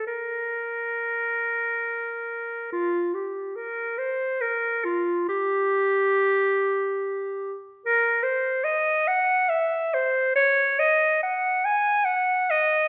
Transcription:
0.07 2.69 A#4 medium
2.73 3.16 F4 medium
3.14 3.58 G4 soft
3.56 4.00 A#4 medium
3.98 4.43 C5 medium
4.41 4.86 A#4 medium
4.85 5.28 F4 medium
5.29 7.55 G4 medium
7.85 8.24 A#4 medium
8.23 8.66 C5 medium
8.64 9.09 D#5 medium
9.08 9.51 F#5 loud
9.49 9.96 E5 medium
9.94 10.35 C5 medium
10.36 10.81 C#5 loud
10.80 11.22 D#5 medium
11.23 11.67 F#5 medium
11.65 12.07 G#5 medium
12.05 12.52 F#5 medium
12.50 12.88 D#5 medium

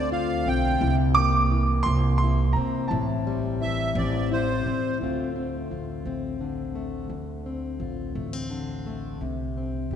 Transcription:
0.00 0.43 D2 loud
0.00 0.82 D2 medium
0.00 0.82 D3 medium
0.00 0.78 A3 medium
0.00 0.47 C4 medium
0.00 0.11 F4 medium
0.00 0.41 A5 medium
0.12 0.77 F4 medium
0.12 0.48 F5 medium
0.46 0.79 B1 medium
0.46 1.20 C4 medium
0.46 0.96 G5 loud
0.81 1.82 C2 loud
0.81 1.51 C3 medium
0.81 2.21 E4 medium
1.15 2.87 A#3 medium
1.15 1.81 D6 loud
1.51 2.87 E3 medium
1.83 2.52 C2 loud
1.83 2.16 C6 loud
1.88 2.56 C4 medium
2.18 2.52 C6 medium
2.23 2.88 E4 medium
2.53 2.89 C3 medium
2.53 3.96 C4 medium
2.53 2.87 A#5 medium
2.88 3.92 A1 loud
2.88 5.01 A2 medium
2.88 4.30 E4 medium
2.88 4.25 A5 medium
3.27 5.01 G3 medium
3.61 4.97 E3 medium
3.61 3.97 E5 loud
3.95 4.62 A1 loud
3.95 4.66 C4 soft
3.95 4.29 D5 medium
4.32 4.97 E4 medium
4.32 4.98 C5 medium
4.66 4.99 A1 medium
4.66 4.97 C4 medium
5.01 5.67 D2 medium
5.01 7.09 D2 medium
5.01 6.40 D3 soft
5.01 6.74 A3 soft
5.01 5.36 C4 soft
5.01 5.71 F4 soft
5.36 6.06 C4 soft
5.71 6.04 A1 medium
5.71 7.07 F4 soft
6.05 7.07 A1 medium
6.05 7.13 C4 soft
6.41 8.49 D3 medium
6.75 7.07 A3 soft
7.09 7.77 D2 medium
7.09 9.21 D2 soft
7.46 8.15 C4 soft
7.80 8.14 A1 medium
7.80 9.17 F4 soft
8.15 9.17 A1 medium
8.15 8.33 A3 soft
8.33 9.21 C4 soft
8.50 9.21 D3 medium
8.86 9.17 A3 soft
9.21 9.88 C2 medium
9.21 9.96 C3 medium
9.58 9.96 C4 medium
9.91 9.96 G2 medium

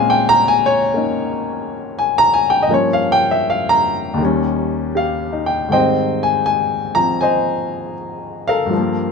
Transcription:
0.00 2.69 A#2 medium
0.00 2.69 G#3 medium
0.00 2.70 C4 medium
0.00 0.94 C#4 medium
0.00 2.71 F5 medium
0.00 0.18 G#5 loud
0.10 0.27 G5 medium
0.29 0.42 A#5 loud
0.48 0.71 G#5 loud
0.66 0.83 C#5 medium
0.94 2.69 A#3 soft
0.94 2.70 C#4 soft
0.94 2.71 D#4 medium
1.99 2.21 G#5 medium
2.18 2.44 A#5 loud
2.34 2.38 G#5 medium
2.50 2.64 G5 medium
2.63 2.70 D#5 medium
2.67 4.19 G2 soft
2.67 4.20 F3 medium
2.67 4.20 A#3 soft
2.72 4.21 C#4 medium
2.72 2.97 C#5 medium
2.93 3.19 F5 medium
3.12 3.28 G5 loud
3.31 3.44 E5 medium
3.50 3.72 F5 medium
3.69 3.85 A#5 loud
4.14 5.67 D#2 medium
4.14 5.68 D#3 medium
4.21 5.70 G3 medium
4.21 5.73 C#4 medium
4.95 5.54 G4 soft
4.95 5.44 F5 medium
5.33 5.85 D#4 medium
5.46 5.71 G5 medium
5.68 8.70 G#2 soft
5.68 8.71 D#3 soft
5.68 8.72 G3 soft
5.68 6.24 G5 medium
5.73 6.97 C4 medium
5.73 7.18 C5 medium
5.73 7.18 D#5 medium
6.23 6.44 G#5 medium
6.46 6.93 G#5 medium
6.95 8.68 F3 soft
6.95 8.72 C4 soft
6.95 7.21 A#5 medium
7.21 8.68 C5 medium
7.21 8.68 D#5 medium
7.21 7.92 G#5 medium
8.48 9.12 A4 medium
8.48 9.12 A#4 medium
8.48 9.12 F5 medium
8.66 9.12 G2 medium
8.66 9.12 F3 soft
8.73 9.12 G3 soft
8.73 9.12 A#3 medium

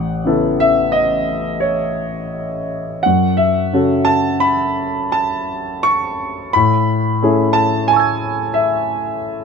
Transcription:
0.00 0.23 A1 soft
0.00 0.59 F#5 medium
0.25 3.00 C#3 soft
0.25 3.01 B3 soft
0.25 3.01 E4 soft
0.25 3.01 A4 soft
0.60 0.94 E5 medium
0.92 1.62 D#5 medium
1.60 2.68 C#5 soft
3.03 3.72 F#2 soft
3.03 3.38 F#5 medium
3.37 4.07 E5 medium
3.73 6.50 C#3 soft
3.73 6.50 C#4 soft
3.73 6.50 F#4 soft
3.73 6.50 A4 soft
4.05 4.41 A5 medium
4.40 5.13 B5 medium
5.12 5.84 A5 medium
5.83 6.53 C#6 medium
6.53 7.20 A2 soft
6.53 7.55 B5 medium
7.22 9.44 A3 soft
7.22 9.44 C#4 soft
7.22 9.44 E4 soft
7.22 9.44 G#4 soft
7.53 7.88 A5 medium
7.88 8.57 G#5 medium
7.88 9.44 A5 soft
7.93 9.44 C#6 soft
7.93 9.44 E6 soft
7.99 9.44 G#6 soft
8.54 9.44 E5 medium

